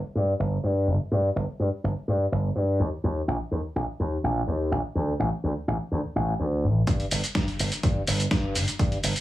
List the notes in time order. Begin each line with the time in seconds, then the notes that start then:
0.15 G2
0.39 G1
0.64 G2
0.87 G1
1.11 G2
1.36 G1
1.48 muted slap bass stroke
1.59 G2
1.84 G1
2.08 G2
2.32 G1
2.56 G2
2.80 D#2
3.04 D#2
3.28 A#1
3.40 muted slap bass stroke
3.51 D#2
3.76 A#1
4.00 D#2
4.24 A#1
4.47 D#2
4.71 A#1
4.95 D2
5.19 A1
5.32 muted slap bass stroke
5.44 D2
5.68 A1
5.91 D2
6.04 muted slap bass stroke
6.15 A1
6.40 D2
6.64 A1
6.87 G2, kick, closed hi-hat, shaker
7.00 closed hi-hat
7.11 G1, open hi-hat, shaker
7.24 muted slap bass stroke, closed hi-hat, shaker
7.35 G2, kick, snare, closed hi-hat, shaker
7.48 closed hi-hat
7.59 G1, open hi-hat, shaker
7.72 closed hi-hat, shaker
7.83 G2, kick, closed hi-hat, shaker
8.07 G1, open hi-hat, shaker
8.20 closed hi-hat, shaker
8.31 G2, kick, snare, closed hi-hat, shaker
8.55 G1, open hi-hat, shaker
8.68 closed hi-hat, shaker
8.79 G2, kick, closed hi-hat, shaker
8.92 closed hi-hat
9.04 G1, open hi-hat, shaker
9.16 muted slap bass stroke, closed hi-hat, shaker